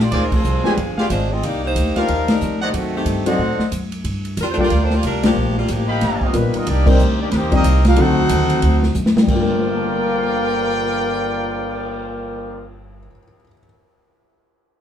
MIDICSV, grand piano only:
0, 0, Header, 1, 2, 480
1, 0, Start_track
1, 0, Key_signature, -2, "minor"
1, 0, Tempo, 326975
1, 175, Time_signature, 4, 2, 24, 8
1, 21738, End_track
2, 0, Start_track
2, 0, Title_t, "Grand piano"
2, 0, Program_c, 0, 0
2, 932, Note_on_c, 0, 56, 62
2, 938, Note_on_c, 0, 59, 53
2, 941, Note_on_c, 0, 65, 60
2, 942, Note_on_c, 0, 62, 55
2, 949, Note_on_c, 0, 67, 73
2, 1107, Note_off_c, 0, 56, 0
2, 1110, Note_off_c, 0, 59, 0
2, 1111, Note_off_c, 0, 65, 0
2, 1112, Note_off_c, 0, 62, 0
2, 1115, Note_off_c, 0, 67, 0
2, 2877, Note_on_c, 0, 53, 52
2, 2879, Note_on_c, 0, 58, 52
2, 2881, Note_on_c, 0, 63, 51
2, 2883, Note_on_c, 0, 62, 51
2, 2885, Note_on_c, 0, 67, 64
2, 3039, Note_off_c, 0, 53, 0
2, 3041, Note_off_c, 0, 58, 0
2, 3041, Note_off_c, 0, 63, 0
2, 3042, Note_off_c, 0, 62, 0
2, 3043, Note_off_c, 0, 67, 0
2, 4787, Note_on_c, 0, 60, 56
2, 4790, Note_on_c, 0, 54, 60
2, 4795, Note_on_c, 0, 62, 62
2, 4797, Note_on_c, 0, 63, 55
2, 4798, Note_on_c, 0, 69, 76
2, 4955, Note_off_c, 0, 60, 0
2, 4957, Note_off_c, 0, 54, 0
2, 4959, Note_off_c, 0, 62, 0
2, 4960, Note_off_c, 0, 63, 0
2, 4961, Note_off_c, 0, 69, 0
2, 6722, Note_on_c, 0, 55, 73
2, 6723, Note_on_c, 0, 58, 60
2, 6726, Note_on_c, 0, 65, 67
2, 6728, Note_on_c, 0, 69, 74
2, 6729, Note_on_c, 0, 62, 62
2, 6883, Note_off_c, 0, 55, 0
2, 6884, Note_off_c, 0, 58, 0
2, 6886, Note_off_c, 0, 65, 0
2, 6886, Note_off_c, 0, 69, 0
2, 6887, Note_off_c, 0, 62, 0
2, 7674, Note_on_c, 0, 55, 66
2, 7677, Note_on_c, 0, 58, 61
2, 7678, Note_on_c, 0, 62, 62
2, 7682, Note_on_c, 0, 65, 58
2, 7686, Note_on_c, 0, 67, 72
2, 7840, Note_off_c, 0, 55, 0
2, 7841, Note_off_c, 0, 58, 0
2, 7842, Note_off_c, 0, 62, 0
2, 7844, Note_off_c, 0, 65, 0
2, 7846, Note_off_c, 0, 67, 0
2, 9293, Note_on_c, 0, 55, 59
2, 9300, Note_on_c, 0, 59, 53
2, 9301, Note_on_c, 0, 63, 50
2, 9303, Note_on_c, 0, 65, 52
2, 9304, Note_on_c, 0, 70, 63
2, 9776, Note_off_c, 0, 55, 0
2, 9780, Note_off_c, 0, 59, 0
2, 9780, Note_off_c, 0, 63, 0
2, 9781, Note_off_c, 0, 65, 0
2, 9781, Note_off_c, 0, 70, 0
2, 10068, Note_on_c, 0, 55, 83
2, 10071, Note_on_c, 0, 60, 67
2, 10071, Note_on_c, 0, 62, 72
2, 10080, Note_on_c, 0, 63, 68
2, 10080, Note_on_c, 0, 70, 81
2, 10237, Note_off_c, 0, 55, 0
2, 10238, Note_off_c, 0, 60, 0
2, 10239, Note_off_c, 0, 62, 0
2, 10243, Note_off_c, 0, 63, 0
2, 10243, Note_off_c, 0, 70, 0
2, 11032, Note_on_c, 0, 55, 65
2, 11033, Note_on_c, 0, 60, 68
2, 11035, Note_on_c, 0, 62, 64
2, 11035, Note_on_c, 0, 67, 73
2, 11041, Note_on_c, 0, 63, 64
2, 11198, Note_off_c, 0, 55, 0
2, 11199, Note_off_c, 0, 60, 0
2, 11200, Note_off_c, 0, 62, 0
2, 11200, Note_off_c, 0, 67, 0
2, 11203, Note_off_c, 0, 63, 0
2, 11701, Note_on_c, 0, 54, 64
2, 11702, Note_on_c, 0, 50, 65
2, 11708, Note_on_c, 0, 60, 59
2, 11708, Note_on_c, 0, 69, 77
2, 11709, Note_on_c, 0, 63, 60
2, 13028, Note_off_c, 0, 54, 0
2, 13029, Note_off_c, 0, 50, 0
2, 13031, Note_off_c, 0, 60, 0
2, 13031, Note_off_c, 0, 69, 0
2, 13032, Note_off_c, 0, 63, 0
2, 13442, Note_on_c, 0, 43, 63
2, 13535, Note_on_c, 0, 55, 55
2, 13623, Note_on_c, 0, 58, 58
2, 13717, Note_on_c, 0, 65, 59
2, 13809, Note_on_c, 0, 70, 72
2, 14112, Note_on_c, 0, 72, 41
2, 14224, Note_on_c, 0, 77, 38
2, 14338, Note_on_c, 0, 81, 39
2, 14475, Note_on_c, 0, 84, 39
2, 14620, Note_on_c, 0, 89, 39
2, 14776, Note_on_c, 0, 93, 35
2, 14950, Note_on_c, 0, 96, 32
2, 19071, Note_off_c, 0, 43, 0
2, 19163, Note_off_c, 0, 55, 0
2, 19251, Note_off_c, 0, 58, 0
2, 19345, Note_off_c, 0, 65, 0
2, 19437, Note_off_c, 0, 70, 0
2, 19605, Note_off_c, 0, 72, 0
2, 19661, Note_off_c, 0, 77, 0
2, 19717, Note_off_c, 0, 81, 0
2, 19786, Note_off_c, 0, 84, 0
2, 19858, Note_off_c, 0, 89, 0
2, 19936, Note_off_c, 0, 93, 0
2, 20024, Note_off_c, 0, 96, 0
2, 21738, End_track
0, 0, End_of_file